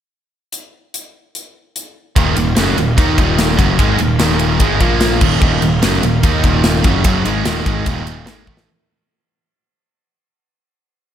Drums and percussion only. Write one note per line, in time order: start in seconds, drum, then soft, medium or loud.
0.52 closed hi-hat medium
0.94 closed hi-hat medium
1.35 closed hi-hat soft
1.76 closed hi-hat medium
2.16 kick loud
2.16 ride medium
2.36 ride medium
2.56 snare loud
2.56 ride medium
2.78 ride medium
2.98 kick loud
2.98 ride loud
3.18 kick medium
3.18 ride medium
3.38 snare loud
3.38 ride loud
3.59 kick medium
3.59 ride medium
3.79 kick loud
3.79 ride loud
3.99 ride medium
4.19 snare loud
4.19 ride medium
4.39 ride medium
4.60 kick loud
4.60 ride medium
4.81 kick loud
4.81 ride medium
5.01 snare loud
5.01 ride loud
5.21 kick loud
5.21 crash loud
5.42 kick loud
5.62 ride medium
5.83 snare loud
5.83 ride loud
6.03 ride medium
6.23 kick medium
6.23 ride medium
6.44 kick medium
6.44 ride medium
6.64 snare loud
6.64 ride medium
6.84 kick medium
6.84 ride medium
7.04 kick loud
7.04 ride loud
7.25 ride medium
7.45 snare loud
7.45 ride loud
7.66 kick loud
7.66 ride medium
7.86 kick medium
7.86 ride medium
8.07 ride medium
8.27 snare loud
8.27 ride loud
8.47 kick medium
8.57 snare loud